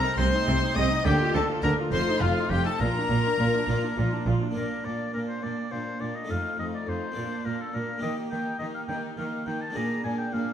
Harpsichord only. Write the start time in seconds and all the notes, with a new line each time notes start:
Already playing: C3 C4 D#4
0.17 C3 A3 D#4
0.46 C3
0.75 C3
1.04 D3 A#3 D4 F4
1.34 D3
1.63 D3
1.92 F2 A3 D#4 F4
2.21 F2
2.79 A#2
3.09 A#2
3.39 A#2
3.68 A#2 A#3 D4 F4
3.97 A#2
4.26 A#2
4.51 A#3 D4 F4
4.56 A#2
4.84 A#2
5.13 A#2
5.42 A#2
5.71 A#2
6.00 A#2
6.24 A3 D#4 F4
6.29 F2
6.58 F2
6.87 F2
7.12 A#3 D4 F4
7.16 A#2
7.45 A#2
7.73 A#2
7.98 A#3 D#4 G4
8.02 D#3
8.31 D#3
8.60 D#3
8.89 D#3
9.17 D#3
9.46 D#3
9.70 A#3 D4 G#4
9.75 A#2
10.04 A#2
10.32 A#2